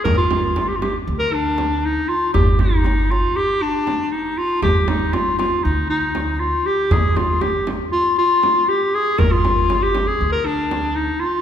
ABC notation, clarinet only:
X:1
M:9/8
L:1/16
Q:3/8=79
K:none
V:1 name="Clarinet"
_B F4 G/2 F/2 G z2 B D4 _E2 F2 | G2 _E4 F2 G2 D4 E2 F2 | G2 _E2 F2 F2 E2 E4 F2 G2 | _A2 F2 G2 z2 F2 F4 G2 A2 |
_B F4 G2 _A2 B D4 _E2 F2 |]